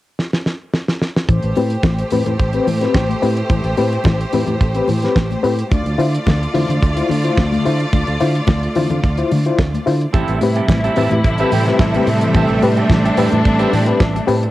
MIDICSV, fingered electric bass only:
0, 0, Header, 1, 2, 480
1, 0, Start_track
1, 0, Key_signature, 0, "minor"
1, 0, Tempo, 552995
1, 1118, Time_signature, 4, 2, 24, 8
1, 12594, End_track
2, 0, Start_track
2, 0, Title_t, "Fingered electric bass"
2, 0, Program_c, 0, 33
2, 1117, Note_on_c, 0, 33, 84
2, 1202, Note_off_c, 0, 33, 0
2, 1249, Note_on_c, 0, 33, 80
2, 1323, Note_off_c, 0, 33, 0
2, 1365, Note_on_c, 0, 45, 89
2, 1523, Note_off_c, 0, 45, 0
2, 1594, Note_on_c, 0, 33, 89
2, 1755, Note_off_c, 0, 33, 0
2, 1845, Note_on_c, 0, 45, 91
2, 1928, Note_off_c, 0, 45, 0
2, 1965, Note_on_c, 0, 45, 80
2, 2040, Note_off_c, 0, 45, 0
2, 2080, Note_on_c, 0, 33, 80
2, 2239, Note_off_c, 0, 33, 0
2, 2323, Note_on_c, 0, 45, 75
2, 2481, Note_off_c, 0, 45, 0
2, 2558, Note_on_c, 0, 33, 76
2, 2718, Note_off_c, 0, 33, 0
2, 2802, Note_on_c, 0, 45, 87
2, 2961, Note_off_c, 0, 45, 0
2, 3038, Note_on_c, 0, 33, 98
2, 3123, Note_off_c, 0, 33, 0
2, 3162, Note_on_c, 0, 33, 90
2, 3239, Note_off_c, 0, 33, 0
2, 3282, Note_on_c, 0, 45, 93
2, 3441, Note_off_c, 0, 45, 0
2, 3516, Note_on_c, 0, 33, 99
2, 3677, Note_off_c, 0, 33, 0
2, 3760, Note_on_c, 0, 45, 90
2, 3845, Note_off_c, 0, 45, 0
2, 3883, Note_on_c, 0, 45, 85
2, 3959, Note_off_c, 0, 45, 0
2, 3999, Note_on_c, 0, 33, 99
2, 4159, Note_off_c, 0, 33, 0
2, 4241, Note_on_c, 0, 45, 82
2, 4400, Note_off_c, 0, 45, 0
2, 4476, Note_on_c, 0, 33, 83
2, 4637, Note_off_c, 0, 33, 0
2, 4722, Note_on_c, 0, 45, 79
2, 4881, Note_off_c, 0, 45, 0
2, 4962, Note_on_c, 0, 38, 88
2, 5046, Note_off_c, 0, 38, 0
2, 5086, Note_on_c, 0, 38, 78
2, 5161, Note_off_c, 0, 38, 0
2, 5194, Note_on_c, 0, 50, 100
2, 5356, Note_off_c, 0, 50, 0
2, 5443, Note_on_c, 0, 38, 100
2, 5602, Note_off_c, 0, 38, 0
2, 5680, Note_on_c, 0, 50, 88
2, 5765, Note_off_c, 0, 50, 0
2, 5810, Note_on_c, 0, 50, 87
2, 5884, Note_off_c, 0, 50, 0
2, 5923, Note_on_c, 0, 38, 93
2, 6082, Note_off_c, 0, 38, 0
2, 6166, Note_on_c, 0, 50, 85
2, 6324, Note_off_c, 0, 50, 0
2, 6401, Note_on_c, 0, 38, 78
2, 6561, Note_off_c, 0, 38, 0
2, 6653, Note_on_c, 0, 50, 87
2, 6809, Note_off_c, 0, 50, 0
2, 6887, Note_on_c, 0, 38, 89
2, 6970, Note_off_c, 0, 38, 0
2, 7014, Note_on_c, 0, 38, 87
2, 7087, Note_off_c, 0, 38, 0
2, 7131, Note_on_c, 0, 50, 90
2, 7288, Note_off_c, 0, 50, 0
2, 7359, Note_on_c, 0, 38, 105
2, 7519, Note_off_c, 0, 38, 0
2, 7610, Note_on_c, 0, 50, 85
2, 7692, Note_off_c, 0, 50, 0
2, 7734, Note_on_c, 0, 50, 79
2, 7807, Note_off_c, 0, 50, 0
2, 7846, Note_on_c, 0, 38, 92
2, 8004, Note_off_c, 0, 38, 0
2, 8089, Note_on_c, 0, 50, 81
2, 8246, Note_off_c, 0, 50, 0
2, 8324, Note_on_c, 0, 38, 81
2, 8483, Note_off_c, 0, 38, 0
2, 8568, Note_on_c, 0, 50, 89
2, 8725, Note_off_c, 0, 50, 0
2, 8802, Note_on_c, 0, 33, 98
2, 8887, Note_off_c, 0, 33, 0
2, 8932, Note_on_c, 0, 33, 90
2, 9006, Note_off_c, 0, 33, 0
2, 9039, Note_on_c, 0, 45, 86
2, 9200, Note_off_c, 0, 45, 0
2, 9276, Note_on_c, 0, 33, 91
2, 9438, Note_off_c, 0, 33, 0
2, 9523, Note_on_c, 0, 45, 97
2, 9607, Note_off_c, 0, 45, 0
2, 9647, Note_on_c, 0, 45, 86
2, 9723, Note_off_c, 0, 45, 0
2, 9760, Note_on_c, 0, 33, 90
2, 9920, Note_off_c, 0, 33, 0
2, 10000, Note_on_c, 0, 45, 89
2, 10160, Note_off_c, 0, 45, 0
2, 10236, Note_on_c, 0, 33, 81
2, 10397, Note_off_c, 0, 33, 0
2, 10477, Note_on_c, 0, 45, 90
2, 10638, Note_off_c, 0, 45, 0
2, 10717, Note_on_c, 0, 33, 101
2, 10803, Note_off_c, 0, 33, 0
2, 10847, Note_on_c, 0, 33, 77
2, 10922, Note_off_c, 0, 33, 0
2, 10961, Note_on_c, 0, 45, 92
2, 11121, Note_off_c, 0, 45, 0
2, 11193, Note_on_c, 0, 33, 102
2, 11355, Note_off_c, 0, 33, 0
2, 11436, Note_on_c, 0, 45, 91
2, 11522, Note_off_c, 0, 45, 0
2, 11567, Note_on_c, 0, 45, 94
2, 11642, Note_off_c, 0, 45, 0
2, 11678, Note_on_c, 0, 33, 106
2, 11838, Note_off_c, 0, 33, 0
2, 11917, Note_on_c, 0, 45, 82
2, 12077, Note_off_c, 0, 45, 0
2, 12154, Note_on_c, 0, 33, 85
2, 12315, Note_off_c, 0, 33, 0
2, 12397, Note_on_c, 0, 45, 75
2, 12556, Note_off_c, 0, 45, 0
2, 12594, End_track
0, 0, End_of_file